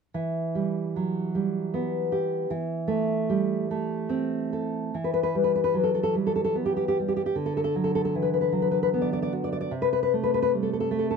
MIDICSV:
0, 0, Header, 1, 2, 480
1, 0, Start_track
1, 0, Key_signature, 1, "minor"
1, 0, Tempo, 820793
1, 77, Time_signature, 3, 2, 24, 8
1, 555, Tempo, 789474
1, 2475, Tempo, 842697
1, 2955, Tempo, 801068
1, 4395, Tempo, 782269
1, 6735, End_track
2, 0, Start_track
2, 0, Title_t, "Nylon-string guitar"
2, 0, Program_c, 0, 24
2, 84, Note_on_c, 0, 52, 45
2, 322, Note_on_c, 0, 55, 38
2, 563, Note_on_c, 0, 54, 35
2, 790, Note_off_c, 0, 55, 0
2, 798, Note_on_c, 0, 55, 38
2, 1035, Note_on_c, 0, 59, 42
2, 1267, Note_on_c, 0, 67, 43
2, 1274, Note_off_c, 0, 54, 0
2, 1488, Note_off_c, 0, 52, 0
2, 1500, Note_on_c, 0, 52, 53
2, 1507, Note_off_c, 0, 67, 0
2, 1509, Note_off_c, 0, 59, 0
2, 1510, Note_off_c, 0, 55, 0
2, 1726, Note_on_c, 0, 57, 48
2, 1981, Note_on_c, 0, 55, 43
2, 2225, Note_off_c, 0, 57, 0
2, 2232, Note_on_c, 0, 57, 46
2, 2466, Note_on_c, 0, 60, 45
2, 2711, Note_off_c, 0, 55, 0
2, 2715, Note_on_c, 0, 69, 40
2, 2928, Note_off_c, 0, 52, 0
2, 2951, Note_off_c, 0, 60, 0
2, 2952, Note_on_c, 0, 52, 41
2, 2955, Note_off_c, 0, 69, 0
2, 2956, Note_off_c, 0, 57, 0
2, 3010, Note_on_c, 0, 71, 51
2, 3060, Note_off_c, 0, 71, 0
2, 3067, Note_on_c, 0, 71, 53
2, 3118, Note_off_c, 0, 71, 0
2, 3125, Note_on_c, 0, 71, 55
2, 3192, Note_off_c, 0, 71, 0
2, 3194, Note_on_c, 0, 55, 34
2, 3249, Note_on_c, 0, 71, 52
2, 3310, Note_off_c, 0, 71, 0
2, 3318, Note_on_c, 0, 71, 51
2, 3361, Note_off_c, 0, 71, 0
2, 3368, Note_on_c, 0, 71, 53
2, 3429, Note_on_c, 0, 54, 34
2, 3434, Note_off_c, 0, 71, 0
2, 3485, Note_on_c, 0, 69, 47
2, 3544, Note_off_c, 0, 69, 0
2, 3551, Note_on_c, 0, 69, 50
2, 3597, Note_off_c, 0, 69, 0
2, 3604, Note_on_c, 0, 69, 54
2, 3666, Note_off_c, 0, 55, 0
2, 3670, Note_off_c, 0, 69, 0
2, 3673, Note_on_c, 0, 55, 35
2, 3744, Note_on_c, 0, 69, 46
2, 3791, Note_off_c, 0, 69, 0
2, 3798, Note_on_c, 0, 69, 50
2, 3844, Note_off_c, 0, 69, 0
2, 3851, Note_on_c, 0, 69, 55
2, 3914, Note_off_c, 0, 69, 0
2, 3916, Note_on_c, 0, 59, 35
2, 3977, Note_on_c, 0, 67, 45
2, 4036, Note_off_c, 0, 67, 0
2, 4043, Note_on_c, 0, 67, 47
2, 4101, Note_off_c, 0, 67, 0
2, 4113, Note_on_c, 0, 67, 50
2, 4152, Note_off_c, 0, 54, 0
2, 4165, Note_off_c, 0, 67, 0
2, 4173, Note_off_c, 0, 55, 0
2, 4181, Note_on_c, 0, 55, 35
2, 4234, Note_on_c, 0, 67, 44
2, 4275, Note_off_c, 0, 67, 0
2, 4282, Note_on_c, 0, 67, 47
2, 4332, Note_off_c, 0, 67, 0
2, 4339, Note_on_c, 0, 67, 46
2, 4369, Note_off_c, 0, 52, 0
2, 4394, Note_off_c, 0, 59, 0
2, 4396, Note_off_c, 0, 67, 0
2, 4396, Note_on_c, 0, 50, 42
2, 4406, Note_off_c, 0, 55, 0
2, 4459, Note_on_c, 0, 69, 50
2, 4518, Note_off_c, 0, 69, 0
2, 4527, Note_on_c, 0, 69, 51
2, 4564, Note_off_c, 0, 69, 0
2, 4571, Note_on_c, 0, 69, 54
2, 4634, Note_off_c, 0, 69, 0
2, 4642, Note_on_c, 0, 54, 37
2, 4693, Note_on_c, 0, 69, 52
2, 4756, Note_off_c, 0, 69, 0
2, 4762, Note_on_c, 0, 69, 53
2, 4815, Note_off_c, 0, 69, 0
2, 4822, Note_on_c, 0, 69, 53
2, 4880, Note_off_c, 0, 69, 0
2, 4885, Note_on_c, 0, 52, 33
2, 4929, Note_on_c, 0, 71, 50
2, 4991, Note_off_c, 0, 71, 0
2, 4998, Note_on_c, 0, 71, 47
2, 5036, Note_off_c, 0, 71, 0
2, 5043, Note_on_c, 0, 71, 49
2, 5106, Note_off_c, 0, 54, 0
2, 5109, Note_off_c, 0, 71, 0
2, 5114, Note_on_c, 0, 54, 36
2, 5173, Note_on_c, 0, 71, 47
2, 5222, Note_off_c, 0, 71, 0
2, 5230, Note_on_c, 0, 71, 47
2, 5291, Note_off_c, 0, 71, 0
2, 5300, Note_on_c, 0, 71, 54
2, 5357, Note_off_c, 0, 71, 0
2, 5366, Note_on_c, 0, 59, 37
2, 5415, Note_on_c, 0, 74, 49
2, 5475, Note_off_c, 0, 74, 0
2, 5485, Note_on_c, 0, 74, 56
2, 5536, Note_off_c, 0, 74, 0
2, 5544, Note_on_c, 0, 74, 60
2, 5600, Note_off_c, 0, 52, 0
2, 5601, Note_off_c, 0, 74, 0
2, 5606, Note_on_c, 0, 66, 38
2, 5676, Note_on_c, 0, 74, 52
2, 5721, Note_off_c, 0, 74, 0
2, 5728, Note_on_c, 0, 74, 56
2, 5770, Note_off_c, 0, 74, 0
2, 5778, Note_on_c, 0, 74, 58
2, 5818, Note_off_c, 0, 50, 0
2, 5840, Note_off_c, 0, 74, 0
2, 5841, Note_off_c, 0, 54, 0
2, 5843, Note_on_c, 0, 48, 45
2, 5846, Note_off_c, 0, 66, 0
2, 5848, Note_off_c, 0, 59, 0
2, 5908, Note_on_c, 0, 71, 56
2, 5967, Note_off_c, 0, 71, 0
2, 5975, Note_on_c, 0, 71, 62
2, 6029, Note_off_c, 0, 71, 0
2, 6036, Note_on_c, 0, 71, 62
2, 6091, Note_off_c, 0, 71, 0
2, 6103, Note_on_c, 0, 57, 41
2, 6163, Note_on_c, 0, 71, 57
2, 6215, Note_off_c, 0, 71, 0
2, 6229, Note_on_c, 0, 71, 59
2, 6272, Note_off_c, 0, 71, 0
2, 6279, Note_on_c, 0, 71, 63
2, 6333, Note_off_c, 0, 71, 0
2, 6353, Note_on_c, 0, 55, 36
2, 6404, Note_on_c, 0, 69, 46
2, 6454, Note_off_c, 0, 69, 0
2, 6469, Note_on_c, 0, 69, 47
2, 6505, Note_off_c, 0, 69, 0
2, 6512, Note_on_c, 0, 69, 52
2, 6566, Note_off_c, 0, 69, 0
2, 6570, Note_off_c, 0, 57, 0
2, 6577, Note_on_c, 0, 57, 40
2, 6625, Note_on_c, 0, 69, 47
2, 6681, Note_off_c, 0, 69, 0
2, 6698, Note_on_c, 0, 69, 48
2, 6735, Note_off_c, 0, 48, 0
2, 6735, Note_off_c, 0, 55, 0
2, 6735, Note_off_c, 0, 57, 0
2, 6735, Note_off_c, 0, 69, 0
2, 6735, End_track
0, 0, End_of_file